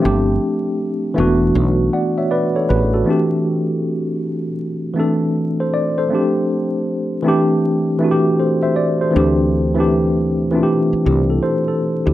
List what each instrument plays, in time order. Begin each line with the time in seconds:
0.00 tine electric piano F3 A3 C4
0.05 fretless electric bass G1, tine electric piano D4 G4
1.14 fretless electric bass E1, tine electric piano E3 A3 B3
1.18 tine electric piano D4 F#4
1.55 fretless electric bass B1
1.93 tine electric piano D5 F#5
2.18 tine electric piano C#5 E5
2.31 tine electric piano B4 D5
2.56 tine electric piano A4 C#5
2.69 fretless electric bass A1, tine electric piano G#4 B4
2.94 tine electric piano F#4 A4
3.04 tine electric piano E3 A3 C4
3.09 tine electric piano D4 G4
4.94 tine electric piano E3 A3 C4
4.99 tine electric piano D4 A4
5.60 tine electric piano A4 C5
5.74 tine electric piano D5
5.98 tine electric piano A4 C5
6.09 tine electric piano F3 A3 C4
6.13 tine electric piano D4 G4
7.23 tine electric piano E3 A3 C4
7.27 tine electric piano D4 G4
7.99 tine electric piano E3 A3 C4
8.03 tine electric piano D4 F#4
8.11 tine electric piano G4
8.39 tine electric piano A4 C5
8.63 tine electric piano C5 E5
8.76 tine electric piano D5
9.01 tine electric piano A4 C5
9.11 tine electric piano E3 A3 C4
9.15 fretless electric bass D2, tine electric piano D4 G4
9.74 tine electric piano E3 A3 C4
9.79 tine electric piano D4 G4
10.51 tine electric piano E3 A3 C4
10.55 tine electric piano D4 F4
10.63 tine electric piano G4
10.93 muted fretless electric bass stroke
11.06 fretless electric bass C2, tine electric piano E4 G4
11.30 tine electric piano A4
11.43 tine electric piano A4 C5
11.68 tine electric piano A4
12.06 fretless electric bass D2, tine electric piano E4 G4